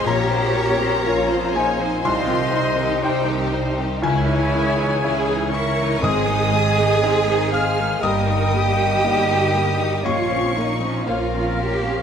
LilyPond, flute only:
\new Staff \with { instrumentName = "Flute" } { \time 4/4 \key bes \dorian \tempo 4 = 60 des''4. c''8 ees''4 c''8 r8 | des''4. fes''8 aes''4. aes''8 | g''2 f''8 r8 bes'4 | }